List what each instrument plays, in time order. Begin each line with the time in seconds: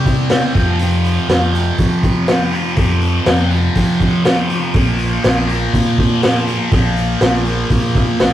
Already playing: fingered electric bass C3, distorted electric guitar G3 C4
0.06 kick, open hi-hat
0.29 distorted electric guitar C3 G3 C4, snare, open hi-hat
0.55 fingered electric bass F2, distorted electric guitar F2 C3 F3, kick, open hi-hat
0.79 distorted electric guitar F2 C3 F3, open hi-hat
1.04 open hi-hat
1.28 distorted electric guitar F2 C3 F3, fingered electric bass F2, snare, open hi-hat
1.53 distorted electric guitar C3 F3, open hi-hat
1.78 fingered electric bass F3, kick, open hi-hat
2.03 kick, open hi-hat
2.27 distorted electric guitar F2 C3 F3, snare, open hi-hat
2.52 distorted electric guitar C3 F3, open hi-hat
2.76 distorted electric guitar F2 C3 F3, fingered electric bass F2, kick, open hi-hat
3.01 open hi-hat
3.26 fingered electric bass F2, distorted electric guitar F2 C3 F3, snare, open hi-hat
3.51 distorted electric guitar C3 F3, open hi-hat
3.75 fingered electric bass F3, kick, open hi-hat
4.00 kick, open hi-hat
4.24 distorted electric guitar F2 C3 F3, snare, open hi-hat
4.49 distorted electric guitar C3 F3, open hi-hat
4.74 fingered electric bass A#1, distorted electric guitar A#2 F3 A#3, kick, open hi-hat
4.99 open hi-hat
5.23 fingered electric bass A#1, distorted electric guitar A#2 F3 A#3, snare, open hi-hat
5.48 distorted electric guitar F3 A#3, open hi-hat
5.73 fingered electric bass A#2, kick, open hi-hat
5.98 kick, open hi-hat
6.22 distorted electric guitar A#2 F3 A#3, snare, open hi-hat
6.46 distorted electric guitar F3 A#3, open hi-hat
6.71 fingered electric bass A#1, distorted electric guitar A#2 F3 A#3, kick, open hi-hat
6.96 open hi-hat
7.20 fingered electric bass A#1, distorted electric guitar A#2 F3 A#3, snare, open hi-hat
7.45 distorted electric guitar F3 A#3, open hi-hat
7.70 fingered electric bass A#2, kick, open hi-hat
7.95 kick, open hi-hat
8.19 fingered electric bass A#1, distorted electric guitar A#2 F3 A#3, snare, open hi-hat